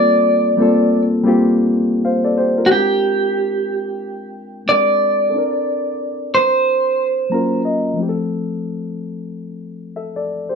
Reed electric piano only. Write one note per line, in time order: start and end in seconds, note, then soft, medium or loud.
0.00 0.38 G3 medium
0.00 0.39 A#3 medium
0.00 0.39 C4 medium
0.00 0.40 F4 medium
0.00 0.40 A4 medium
0.57 1.06 G3 medium
0.57 1.07 A#3 medium
0.57 1.07 C4 medium
0.57 1.08 F4 medium
0.62 1.08 A4 medium
1.24 2.26 G3 medium
1.24 2.26 A#3 medium
1.24 2.27 C4 medium
1.24 2.05 F4 medium
1.28 2.05 G4 loud
2.05 2.23 C5 medium
2.05 2.23 F5 medium
2.25 2.37 A4 medium
2.25 2.36 D5 medium
2.38 2.56 G4 medium
2.38 2.56 C5 medium
2.58 2.89 F4 medium
2.58 2.73 A#4 medium
2.66 4.62 G#3 soft
2.66 4.63 C4 soft
2.70 4.64 D4 soft
2.70 4.65 G4 soft
2.75 4.66 A#4 medium
4.66 5.33 G#3 soft
4.66 5.30 C4 soft
4.66 5.33 D4 soft
4.66 5.34 G4 soft
4.70 5.35 A#4 soft
5.30 7.26 C4 soft
5.30 7.25 A4 soft
5.34 7.27 D4 soft
5.34 7.29 E4 soft
5.38 7.30 A#4 medium
7.30 7.96 F#3 medium
7.30 7.97 A#3 medium
7.30 7.97 C#4 medium
7.30 7.98 F4 medium
7.30 7.62 A#5 medium
7.34 7.99 A#4 medium
7.65 7.95 D#5 medium
7.94 10.55 F3 medium
7.94 10.55 A3 medium
7.98 10.55 C4 medium
7.98 10.55 E4 medium
8.03 8.08 G4 medium
8.09 9.96 A4 medium
9.96 10.15 A4 soft
9.96 10.15 E5 medium
10.16 10.47 A4 soft
10.16 10.47 D5 medium
10.49 10.55 G4 soft
10.49 10.55 C5 medium